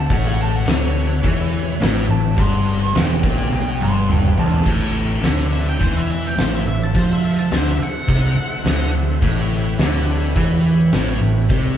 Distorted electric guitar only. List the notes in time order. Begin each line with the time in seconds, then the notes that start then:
0.10 A2
0.66 D3
1.23 E3
1.80 A2
2.09 A2
2.36 G2
2.95 E2
3.22 A#2
3.50 B2
3.79 G2
4.36 E2
4.64 A2
5.21 D3
5.79 E3
6.36 A2
6.65 A2
6.94 F3
7.51 D3
7.79 muted distorted electric guitar stroke
8.08 C3
8.36 muted distorted electric guitar stroke
8.64 D3
8.93 D3
9.22 A2
9.79 D3
10.36 E3
10.93 A2
11.21 A2
11.49 C3